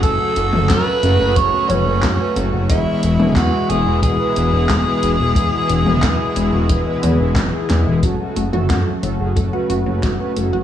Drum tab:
HH |x-x-x-x-x-x-x-x-|x-x-x-x-x-x-x-x-|x-x-x-x-x-x-x-x-|x-x-x-x-x-x-x-x-|
CP |----x-------x---|----x-------x---|----x-------x---|----------------|
SD |----o-------o---|----o-------o---|----o-------o-o-|----o-------o---|
T2 |---o------o-----|---o------------|---o------o-----|---o------------|
BD |o---o---o---o---|o---o---o---o---|o---o---o---o---|o---o---o---o---|